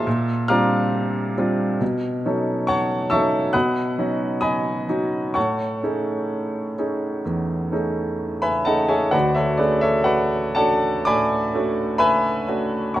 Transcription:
Already playing: E5 A5 C6 E6
0.07 A#2
0.48 G3 C4 D4 F4 F5 A#5 D6 F6
1.38 G3 C4 D4 F4
1.81 B2
2.25 F#3 C#4 D#4 A4
2.67 C#5 F#5 A5 C#6
3.10 F#3 C#4 D#4 A4 E5 A5 C#6 E6
3.53 B2 F#5 B5 D#6 F#6
3.98 F#3 C#4 D#4 F#4
4.41 D#5 G#5 B5 D#6
4.88 F#3 C#4 D#4 F#4
5.34 A2 C#5 F#5 A5 C#6
5.83 A3 C#4 D#4 G#4
6.78 A3 C#4 D#4 G#4
7.25 E2
7.72 A3 C#4 D#4 G#4
8.42 B4 E5 G#5 B5
8.65 A3 C#4 D#4 G#4 A4 D#5 F#5 A5
8.88 G#4 C#5 E5 G#5
9.11 D2 F#4 B4 D5 F#5
9.35 A4 C#5 E5
9.57 A3 C#4 D4 F#4 G#4 B4 D5
9.81 A4 C#5 E5
10.04 F#4 B4 D5 F#5
10.55 A3 C#4 D4 F#4 A4 D5 F#5 A5
11.05 A2 D5 G#5 B5 D6
11.54 A3 C#4 D4 F#4
11.98 B4 E5 G#5 B5
12.47 A3 C#4 D4 F#4
12.94 C#2 C#5 F#5 A#5 C#6

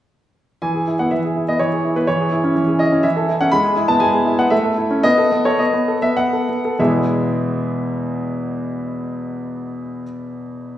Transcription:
0.62 E3 G#5
0.74 G#4
0.87 E4
0.99 B3 F#5
1.11 E3 E5
1.25 G#4
1.36 E4
1.48 B3 D#5
1.59 E3 C#5
1.72 G#4
1.84 E4
1.96 B3 B4
2.07 E3 C#5
2.20 G#4
2.32 E4
2.44 C#4
2.56 E3
2.68 G#4
2.79 E4 D#5
2.92 C#4
3.03 E3 E5
3.17 A4
3.28 E4
3.41 C#4 F#5
3.52 G#3 B5
3.64 G#4
3.76 E4
3.88 B3 A5
4.00 G#3 G#5
4.13 G#4
4.26 E4
4.39 B3 F#5
4.50 A3 E5
4.64 A4
4.78 E4
4.91 C#4
5.03 B3 D#5
5.18 A4
5.32 B3
5.45 A4 C#5
5.59 B3 D#5
5.73 B3
5.88 A4
6.02 B3 E5
6.17 B3 F#5
6.33 A4
6.49 B3
6.65 A4
6.79 E2 B2 G#3 B3 E4 G#4 E5

